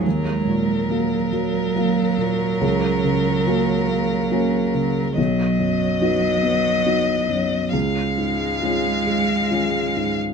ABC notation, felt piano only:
X:1
M:3/4
L:1/8
Q:1/4=70
K:Ebm
V:1 name="Felt piano"
E,, B,, [G,B,G] G, [G,B,G] B,, | D,, D, [B,DG] B, [B,DG] D, | =B,,, ^F,, [=B,^D^F] B, [B,DF] F,, | D,, A,, [A,DF] A, [A,DF] A,, |]